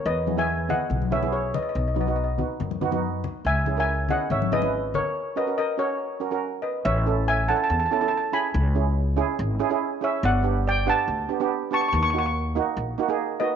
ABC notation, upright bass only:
X:1
M:4/4
L:1/8
Q:1/4=142
K:C#dor
V:1 name="Upright bass" clef=bass
E,,4 B,,,4 | B,,,4 F,,4 | C,,4 G,,,4 | z8 |
=A,,,4 E,, z3 | C,,4 G,,, z3 | =G,,,4 =D,, z3 | D,,4 A,,, z3 |]